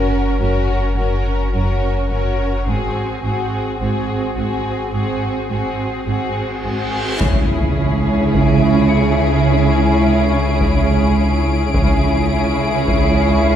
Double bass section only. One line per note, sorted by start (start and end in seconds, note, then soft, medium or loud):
0.41 0.49 F#1 soft
0.97 1.05 F#1 soft
1.54 1.62 F#1 soft
2.11 2.19 F#1 soft
2.67 2.75 G#1 soft
3.23 3.31 G#1 soft
3.80 3.88 G#1 soft
4.36 4.44 G#1 soft
4.94 5.02 G#1 soft
5.51 5.59 G#1 soft
6.07 6.15 G#1 soft
6.64 6.72 G#1 soft
7.21 11.70 C#2 soft
11.75 13.56 C#2 medium